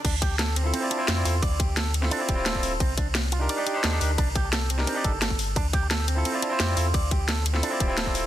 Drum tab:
CC |x---------------|----------------|----------------|----------------|
RD |x-x-x-x-x-x-x-x-|x-x-x-x-x-x-x-x-|x-x-x-x-x-x-x-x-|x-x-x-x-x-x-x-x-|
HH |x-x-x-x-x-x-x-o-|x-x-x-x-x-x-x-o-|x-x-x-x-x-x-x-o-|x-x-x-x-x-x-x-o-|
SD |----o-------o---|----o--o----o---|----o-------o---|----o--o----o---|
BD |o-o-------------|o-o-------o--o--|o-o-------------|o-o-------o--o--|

CC |----------------|----------------|
RD |x-x-x-x-x-x-x-x-|x-x-x-x-x-x-x-x-|
HH |x-x-x-x-x-x-x-o-|x-x-x-x-x-x-x-o-|
SD |----o-------o---|----o--o----o---|
BD |o-o-------------|o-o-------o--o--|